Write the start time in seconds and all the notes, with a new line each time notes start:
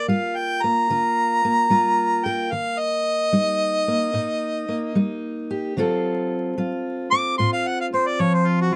Already playing: A#3 A#4
0.08 G3 F4 F5
0.36 G5
0.63 A#3 A#5
0.90 D3 F4
1.45 A#3
1.70 G3 F4
2.25 A#4 G5
2.52 D#3 F5
2.79 D#5
3.33 G3 D#4
3.88 A#3
4.13 A#2 D#4
4.68 A#3
4.95 G3 D#4
5.51 G4
5.77 D3 F#3 C4 F4 A4
6.58 F#3 F4
7.11 C4 D6
7.38 A2 F4 C6
7.53 F5
7.67 F#5
7.81 F5
7.94 C4 C5
8.07 D5
8.20 F3 C#5
8.34 C5
8.48 F4
8.61 F#4